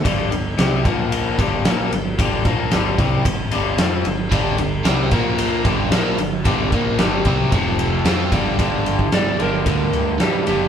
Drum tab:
RD |x-x-x-x-x-x-x-x-|x-x-x-x-x-x-x-x-|x-x-x-x-x-x-x-x-|x-x-x-x-x-x-x-x-|
SD |----o-------o---|----o-------o---|----o-------o---|----o-------o---|
BD |o-----o---o-----|o-o---o-o-------|o-----o---o-----|o-o---o-o-----o-|

RD |x-x-x-x-x-x-x-x-|
SD |----o-------o---|
BD |o--o----o-------|